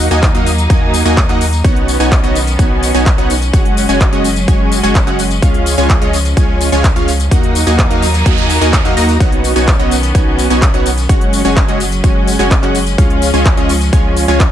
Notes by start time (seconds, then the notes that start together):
Already playing: F#3 A#3 D#4
0.11 D#2 A#3 D#4 F#4 D#5 G#5, closed hi-hat, tambourine
0.23 kick, clap, closed hi-hat, tambourine
0.34 D#2 A#3 D#4 F#4 D#5 F5, closed hi-hat
0.47 open hi-hat, tambourine
0.58 closed hi-hat, tambourine
0.70 D#2 A#3 D#4 F#4 D#5 G#5, kick, closed hi-hat, tambourine
0.94 open hi-hat, tambourine
1.05 D#2 A#3 D#4 F#4 D#5 G#5, closed hi-hat, tambourine
1.17 kick, clap, closed hi-hat, tambourine
1.29 D#2 A#3 D#4 F#4 D#5 F#5, clap, closed hi-hat
1.41 open hi-hat, tambourine
1.53 closed hi-hat, tambourine
1.65 B1 D#3 B3 C#4 D#4 F#4 C#5 F#5, kick, closed hi-hat, tambourine
1.76 closed hi-hat
1.88 open hi-hat, tambourine
2.00 B1 B3 D#4 F#4 C#5 G#5, closed hi-hat, tambourine
2.12 kick, clap, closed hi-hat, tambourine
2.24 B1 B3 D#4 F#4 C#5 D#5, closed hi-hat
2.35 open hi-hat, tambourine
2.47 closed hi-hat, tambourine
2.59 B1 B3 D#4 F#4 C#5 G#5, kick, closed hi-hat, tambourine
2.83 open hi-hat, tambourine
2.94 B1 B3 D#4 F#4 C#5 G#5, closed hi-hat, tambourine
3.06 kick, clap, closed hi-hat, tambourine
3.18 B1 B3 D#4 F#4 C#5 F#5, closed hi-hat
3.30 open hi-hat, tambourine
3.42 closed hi-hat, tambourine
3.53 F#1 F#3 G#3 C#4 F#4 C#5 F#5, kick, closed hi-hat, tambourine
3.65 closed hi-hat
3.77 open hi-hat, tambourine
3.89 F#1 G#3 C#4 F#4 C#5 G#5, closed hi-hat, tambourine
4.01 kick, clap, closed hi-hat, tambourine
4.13 F#1 G#3 C#4 F#4 C#5 D#5, closed hi-hat
4.24 open hi-hat, tambourine
4.36 closed hi-hat, tambourine
4.48 F#1 G#3 C#4 F#4 C#5 G#5, kick, closed hi-hat, tambourine
4.72 open hi-hat, tambourine
4.83 F#1 G#3 C#4 F#4 C#5 G#5, closed hi-hat, tambourine
4.95 kick, clap, closed hi-hat, tambourine
5.07 F#1 G#3 C#4 F#4 C#5 F#5, clap, closed hi-hat
5.19 open hi-hat, tambourine
5.31 closed hi-hat, tambourine
5.42 C#2 F3 G#3 C#4 F4 C#5 F5, kick, closed hi-hat, tambourine
5.54 closed hi-hat
5.66 open hi-hat, tambourine
5.78 C#2 G#3 C#4 F4 C#5 G#5, closed hi-hat, tambourine
5.90 kick, clap, closed hi-hat, tambourine
6.02 C#2 G#3 C#4 F4 C#5 D#5, closed hi-hat
6.13 open hi-hat, tambourine
6.25 closed hi-hat, tambourine
6.37 C#2 G#3 C#4 F4 C#5 G#5, kick, closed hi-hat, tambourine
6.61 open hi-hat, tambourine
6.72 C#2 G#3 C#4 F4 C#5 G#5, closed hi-hat, tambourine
6.84 kick, clap, closed hi-hat, tambourine
6.96 C#2 G#3 C#4 F4 C#5 F5, closed hi-hat
7.08 open hi-hat, tambourine
7.20 closed hi-hat, tambourine
7.31 D#2 F#3 A#3 D#4 F#4 D#5 F#5, kick, closed hi-hat, tambourine, noise sweep
7.43 closed hi-hat
7.55 open hi-hat, tambourine
7.67 D#2 A#3 D#4 F#4 D#5 G#5, closed hi-hat, tambourine
7.79 kick, clap, closed hi-hat, tambourine
7.90 D#2 A#3 D#4 F#4 D#5 F5, closed hi-hat
8.02 open hi-hat, tambourine
8.14 closed hi-hat, tambourine
8.26 D#2 A#3 D#4 F#4 D#5 G#5, kick, closed hi-hat, tambourine
8.38 closed hi-hat
8.50 open hi-hat, tambourine
8.61 D#2 A#3 D#4 F#4 D#5 G#5, closed hi-hat, tambourine
8.73 kick, clap, closed hi-hat, tambourine
8.85 D#2 A#3 D#4 F#4 D#5 F5, clap, closed hi-hat
8.97 D#2 A#3 D#4 F#4 D#5 A#5, open hi-hat, tambourine
9.09 closed hi-hat, tambourine
9.20 B1 D#3 B3 C#4 D#4 F#4 C#5 F#5, kick, closed hi-hat, tambourine
9.32 closed hi-hat
9.44 open hi-hat, tambourine
9.56 B1 B3 D#4 F#4 C#5 G#5, closed hi-hat, tambourine
9.68 kick, clap, closed hi-hat, tambourine
9.79 B1 B3 D#4 F#4 C#5 D#5, closed hi-hat
9.91 open hi-hat, tambourine
10.03 closed hi-hat, tambourine
10.15 B1 B3 D#4 F#4 C#5 G#5, kick, closed hi-hat, tambourine
10.39 open hi-hat, tambourine
10.50 B1 B3 D#4 F#4 C#5 G#5, closed hi-hat, tambourine
10.62 kick, clap, closed hi-hat, tambourine
10.74 B1 B3 D#4 F#4 C#5 F#5, closed hi-hat
10.86 open hi-hat, tambourine
10.98 closed hi-hat, tambourine
11.09 F#1 F#3 G#3 C#4 F#4 C#5 F#5, kick, closed hi-hat
11.21 closed hi-hat
11.33 open hi-hat, tambourine
11.45 F#1 G#3 C#4 F#4 C#5 G#5, closed hi-hat, tambourine
11.57 kick, clap, closed hi-hat, tambourine
11.68 F#1 G#3 C#4 F#4 C#5 D#5, closed hi-hat
11.80 open hi-hat, tambourine
11.92 closed hi-hat, tambourine
12.04 F#1 G#3 C#4 F#4 C#5 G#5, kick, closed hi-hat, tambourine
12.28 open hi-hat, tambourine
12.39 F#1 G#3 C#4 F#4 C#5 G#5, closed hi-hat, tambourine
12.51 kick, clap, closed hi-hat, tambourine
12.63 F#1 G#3 C#4 F#4 C#5 F#5, clap, closed hi-hat
12.75 open hi-hat, tambourine
12.87 closed hi-hat, tambourine
12.98 C#2 F3 G#3 C#4 F4 C#5 F5, kick, closed hi-hat, tambourine
13.10 closed hi-hat
13.22 open hi-hat, tambourine
13.34 C#2 G#3 C#4 F4 C#5 G#5, closed hi-hat, tambourine
13.46 kick, clap, closed hi-hat, tambourine
13.57 C#2 G#3 C#4 F4 C#5 D#5, closed hi-hat
13.69 open hi-hat, tambourine
13.81 closed hi-hat, tambourine
13.93 C#2 G#3 C#4 F4 C#5 G#5, kick, closed hi-hat, tambourine
14.17 open hi-hat, tambourine
14.28 C#2 G#3 C#4 F4 C#5 G#5, closed hi-hat, tambourine
14.40 kick, clap, closed hi-hat, tambourine